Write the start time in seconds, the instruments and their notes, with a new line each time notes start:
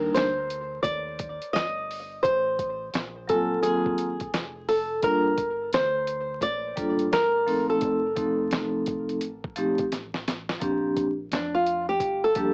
Already playing: fingered electric bass D#2, vibraphone G3 A#3 D4 D#4 A#4, nylon-string guitar A#4
0.14 fingered electric bass D2, nylon-string guitar C5, snare, closed hi-hat
0.50 closed hi-hat
0.83 fingered electric bass D#2, nylon-string guitar D5, kick, closed hi-hat
1.19 kick, closed hi-hat
1.42 closed hi-hat
1.53 fingered electric bass G1, nylon-string guitar D#5, snare, closed hi-hat
1.91 open hi-hat
2.23 fingered electric bass A1, nylon-string guitar C5, kick, closed hi-hat
2.59 kick, closed hi-hat
2.93 fingered electric bass A#1, snare, closed hi-hat
3.27 vibraphone F#3 A#3 C4 F4 G#5, nylon-string guitar A4, kick, closed hi-hat
3.62 fingered electric bass G#1, vibraphone F#3 A#3 C4 F4 G#4, nylon-string guitar G#4, closed hi-hat
3.86 kick
3.98 closed hi-hat
4.20 kick, closed hi-hat
4.33 fingered electric bass F1, snare, closed hi-hat
4.69 nylon-string guitar A4, open hi-hat
5.02 fingered electric bass G1, vibraphone G3 A#3 D4 F4 A#4, nylon-string guitar A#4, kick, closed hi-hat
5.38 kick, closed hi-hat
5.72 fingered electric bass D2, nylon-string guitar C5, snare, closed hi-hat
6.07 closed hi-hat
6.41 fingered electric bass A#1, nylon-string guitar D5, kick, closed hi-hat
6.76 fingered electric bass A1, vibraphone G3 A#3 D4 F4 A4, kick, closed hi-hat
6.99 closed hi-hat
7.12 fingered electric bass G1, nylon-string guitar A#4, snare, closed hi-hat
7.46 fingered electric bass A#1, vibraphone F3 A3 C4 D#4 A4, open hi-hat
7.70 nylon-string guitar A4
7.81 fingered electric bass F1, kick, closed hi-hat
8.15 vibraphone F3 A3 C4 D#4 A4, kick, closed hi-hat
8.51 fingered electric bass C2, snare, closed hi-hat
8.86 kick, closed hi-hat
9.09 closed hi-hat
9.21 fingered electric bass A1, closed hi-hat
9.44 kick
9.56 fingered electric bass A#1, vibraphone F3 A3 C4 D#4 G4, closed hi-hat
9.78 kick, closed hi-hat
9.92 fingered electric bass A1, snare, closed hi-hat
10.14 snare
10.28 snare, closed hi-hat
10.49 snare
10.60 fingered electric bass A#1, vibraphone F3 A#3 C4 D4 G4, kick, closed hi-hat
10.97 kick, closed hi-hat
11.31 fingered electric bass F2, nylon-string guitar D4, snare, closed hi-hat
11.55 nylon-string guitar F4
11.66 closed hi-hat
11.89 nylon-string guitar G4
12.00 fingered electric bass G1, kick, closed hi-hat
12.24 nylon-string guitar A4
12.35 vibraphone F3 G3 A#3 D4 G4, kick, closed hi-hat